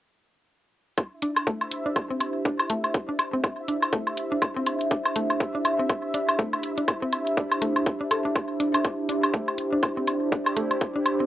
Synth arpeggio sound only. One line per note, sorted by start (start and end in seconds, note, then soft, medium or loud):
1.22 1.29 D4 medium
1.47 1.51 A3 medium
1.86 1.89 D4 medium
2.11 2.15 C4 medium
2.45 2.52 D4 medium
2.70 2.74 A3 medium
3.09 3.12 D4 medium
3.33 3.38 C4 medium
3.68 3.75 D4 medium
3.93 3.97 A3 loud
4.32 4.34 D4 medium
4.56 4.61 C4 medium
4.91 4.98 D4 medium
5.16 5.20 A3 medium
5.55 5.57 D4 medium
5.79 5.84 C4 medium
6.14 6.20 D4 medium
6.39 6.42 A3 loud
6.78 6.80 D4 medium
7.02 7.07 C4 medium
7.37 7.43 D4 medium
7.62 7.65 A3 loud
8.01 8.03 D4 medium
8.11 8.17 A4 loud
8.25 8.30 D4 medium
8.60 8.64 D4 medium
8.74 8.81 D4 medium
9.09 9.16 D4 medium
9.34 9.38 A3 medium
9.73 9.75 D4 medium
9.97 10.02 C4 medium
10.32 10.38 D4 medium
10.57 10.60 A3 loud
10.96 10.98 D4 medium
11.20 11.25 C4 medium